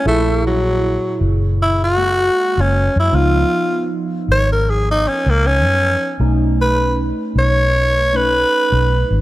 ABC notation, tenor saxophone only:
X:1
M:4/4
L:1/16
Q:"Swing 16ths" 1/4=78
K:C#dor
V:1 name="Tenor saxophone"
=A,2 F,4 z2 E F4 C2 E | ^E4 z2 c A G D C A, C4 | z2 B2 z2 c4 B6 |]